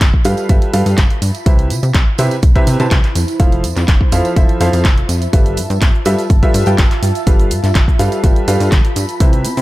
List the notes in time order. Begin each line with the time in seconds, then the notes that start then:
Already playing: F4 E5 A5 B5
0.01 G1, kick, clap, closed hi-hat, tambourine
0.14 kick
0.25 G2 G3 F4 G4 A4 B4 F5, open hi-hat, tambourine
0.37 closed hi-hat, tambourine
0.49 G1 G3 F4 G4 A4 B4 E5, kick, closed hi-hat, tambourine
0.62 closed hi-hat
0.73 G2 G3 F4 G4 A4 B4 F5, open hi-hat, tambourine
0.86 G2, open hi-hat, tambourine
0.98 G1, kick, clap, closed hi-hat, tambourine
1.10 closed hi-hat
1.22 G2, open hi-hat, tambourine
1.35 closed hi-hat, tambourine
1.46 C2 C3 E4 G4 B4 C5 E5, kick, closed hi-hat, tambourine
1.59 closed hi-hat
1.70 C3, open hi-hat, tambourine
1.80 C3 C5, closed hi-hat, tambourine
1.94 C2, kick, clap, closed hi-hat, tambourine
2.18 C3 E4 G4 B4 C5 E5, open hi-hat, tambourine
2.31 closed hi-hat, tambourine
2.42 C2, kick, closed hi-hat, tambourine
2.55 C3 E4 G4 B4 C5 E5, kick, closed hi-hat
2.67 C3, open hi-hat, tambourine
2.80 C3 E4 G4 B4 C5 A5, closed hi-hat, tambourine
2.91 C2, kick, clap, closed hi-hat, tambourine
3.04 clap, closed hi-hat
3.15 F2 F4, open hi-hat, tambourine
3.28 closed hi-hat, tambourine
3.39 F1 F3 E4 F4 A4 C5 F5, kick, closed hi-hat, tambourine
3.48 E5
3.52 closed hi-hat
3.64 F2, open hi-hat, tambourine
3.76 F2, clap, closed hi-hat, tambourine
3.88 F1, kick, clap, closed hi-hat, tambourine
4.01 kick
4.12 F2 F3 E4 F4 A4 C5 F5 A5, open hi-hat, tambourine
4.25 closed hi-hat, tambourine
4.36 F1 F3 E4 F4 A4 C5 E5, kick, closed hi-hat, tambourine
4.49 closed hi-hat
4.60 F2 F3 E4 F4 A4 C5 F5, open hi-hat, tambourine
4.73 F2, open hi-hat, tambourine
4.85 F1, kick, clap, closed hi-hat, tambourine
4.98 closed hi-hat
5.09 F2, open hi-hat, tambourine
5.22 closed hi-hat, tambourine
5.33 G1 G3 F4 G4 A4 B4 E5, kick, closed hi-hat, tambourine, shaker
5.46 closed hi-hat, shaker
5.57 G2, open hi-hat, tambourine, shaker
5.70 G2, closed hi-hat, tambourine, shaker
5.82 G1, kick, clap, closed hi-hat, tambourine, shaker
5.95 shaker
6.05 G2 G3 F4 G4 A4 B4 E5, open hi-hat, tambourine, shaker
6.19 closed hi-hat, tambourine, shaker
6.30 G1, kick, closed hi-hat, tambourine, shaker
6.43 G3 F4 G4 A4 B4 E5, kick, closed hi-hat, shaker
6.54 G2, open hi-hat, tambourine, shaker
6.66 G2 G3 F4 G4 A4 B4 G5, closed hi-hat, tambourine, shaker
6.78 G1 B5, kick, clap, closed hi-hat, tambourine, shaker
6.91 clap, closed hi-hat, shaker
7.03 G2, open hi-hat, tambourine, shaker
7.15 closed hi-hat, tambourine, shaker
7.27 G1 G3 F4 G4 A4 B4 F5, kick, closed hi-hat, tambourine, shaker
7.39 closed hi-hat, shaker
7.51 G2, open hi-hat, tambourine, shaker
7.64 G2, clap, closed hi-hat, tambourine, shaker
7.75 G1, kick, clap, closed hi-hat, tambourine, shaker
7.88 kick, shaker
7.99 G2 G3 F4 G4 A4 B4 F5, open hi-hat, tambourine, shaker
8.12 closed hi-hat, tambourine, shaker
8.24 G1 G3 F4 G4 A4 B4 E5, kick, closed hi-hat, tambourine, shaker
8.36 closed hi-hat, shaker
8.48 G2 G3 F4 G4 A4 B4 F5, open hi-hat, tambourine, shaker
8.60 G2, open hi-hat, tambourine, shaker
8.72 G1, kick, clap, closed hi-hat, tambourine, shaker
8.85 closed hi-hat, shaker
8.96 G2, open hi-hat, tambourine, shaker
9.09 closed hi-hat, tambourine, shaker
9.20 C2 C3 E4 G4 B4 C5 E5, kick, closed hi-hat, tambourine, shaker
9.33 closed hi-hat, shaker
9.45 C3, open hi-hat, tambourine, shaker
9.57 C3, closed hi-hat, tambourine, shaker